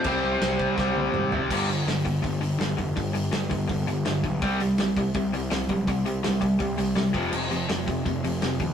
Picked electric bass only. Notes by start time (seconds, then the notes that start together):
0.05 C2
0.23 C2
0.42 C2
0.78 C2
0.96 C2
1.13 G#1
1.50 G1
1.88 G1
2.24 G1
2.41 G1
2.59 G1
2.79 F1
2.97 G1
3.33 G1
3.69 G1
3.88 G1
4.06 G1
4.24 B1
4.42 C2
4.78 C2
5.15 C2
5.33 C2
5.52 C2
5.69 B1
5.87 C2
6.24 C2
6.60 C2
6.78 C2
6.97 C2
7.14 F1
7.33 F1
7.69 F1
8.06 F1
8.24 F1
8.43 F1
8.60 D#2